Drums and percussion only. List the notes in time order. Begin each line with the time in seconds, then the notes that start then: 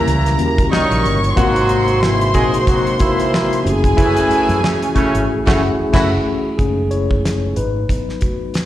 0.08 closed hi-hat
0.26 snare, closed hi-hat
0.39 closed hi-hat
0.58 kick, closed hi-hat
0.73 snare
0.92 closed hi-hat
1.05 closed hi-hat
1.24 closed hi-hat
1.37 kick, closed hi-hat
1.56 closed hi-hat
1.69 closed hi-hat
1.88 closed hi-hat
2.03 snare
2.21 closed hi-hat
2.34 kick, closed hi-hat
2.54 closed hi-hat
2.67 kick, closed hi-hat
2.87 closed hi-hat
2.99 kick, closed hi-hat
3.20 closed hi-hat
3.34 snare
3.53 closed hi-hat
3.67 closed hi-hat
3.84 kick, closed hi-hat
3.98 kick, closed hi-hat
4.17 closed hi-hat
4.31 closed hi-hat
4.49 closed hi-hat
4.64 snare
4.82 closed hi-hat
4.96 kick, closed hi-hat
5.15 closed hi-hat
5.47 kick, snare, crash
5.94 kick, snare, crash
6.59 kick, closed hi-hat
6.91 closed hi-hat
7.11 kick
7.25 snare, closed hi-hat
7.56 closed hi-hat
7.89 kick, closed hi-hat
8.09 snare
8.21 kick, closed hi-hat
8.54 snare, closed hi-hat